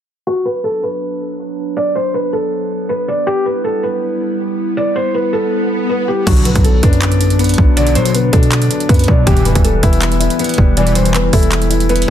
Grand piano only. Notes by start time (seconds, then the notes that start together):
6.27 D3
6.45 F#3
6.64 B3
6.83 D4
7.02 D5
7.20 D4
7.39 B3
7.58 F#3
7.77 D3
7.95 F#3
8.14 B3
8.33 D4
8.52 D5
8.70 D4
8.89 B3
9.08 F#3
9.27 E3
9.46 G3
9.64 B3
9.83 E4
10.01 E5
10.20 E4
10.40 B3
10.58 G3
10.78 E3
10.96 G3
11.14 B3
11.34 E4
11.70 E4
11.89 B3